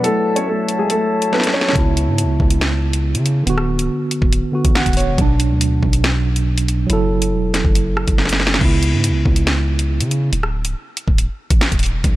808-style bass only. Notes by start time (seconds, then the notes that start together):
1.76 C#2
2.08 G#2
2.24 C#2
2.40 C#2
3.15 C#3
3.47 D1
3.79 C#1
4.22 D1
4.65 A1
4.86 D1
5.07 E1
5.18 B1
5.50 D2
5.83 B1
6.90 F#1
7.33 E1
7.65 F#1
8.08 F#1
8.61 C#2
8.93 G#2
9.09 C#2
9.25 C#2
10.00 C#3
10.33 D1
10.65 C#1
11.08 D1
11.51 A1
11.72 D1
11.93 E1
12.04 B1